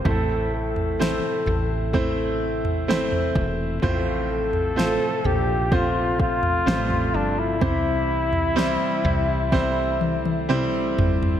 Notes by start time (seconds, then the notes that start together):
Already playing: C3
0.05 A1 A2 E3 A3 C4 E4 A4 C5, kick, floor tom
0.55 A4
0.76 floor tom
0.99 A3 C4 E4 C5, snare
1.46 A1, floor tom
1.93 A3 C4 E4 C5, kick, floor tom
2.65 floor tom
2.88 A3 C4 E4 C5, snare
3.12 floor tom
3.36 E1, kick
3.82 A1 A2 F3 A3 C4 F4 C5, kick, floor tom
4.31 A4
4.53 floor tom
4.76 A3 C4 F4 C5, snare
5.25 A#1 G4, floor tom
5.71 A3 C4 F4 C5, kick, floor tom
6.20 F4, kick
6.43 floor tom
6.66 A1 G3 C4 F4 C5, snare
6.72 A3
6.90 floor tom
7.14 G1 D4
7.39 E4
7.61 C2 C3 E3 G3 C4 E4 C5, kick, floor tom
8.33 floor tom
8.56 G3 C4 E4 C5, snare
9.04 C2, floor tom
9.52 G3 A3 C4 E4 C5, kick, snare
10.01 high tom
10.26 high tom
10.49 G3 C4 E4 C5, mid tom
10.98 G1, floor tom
11.23 floor tom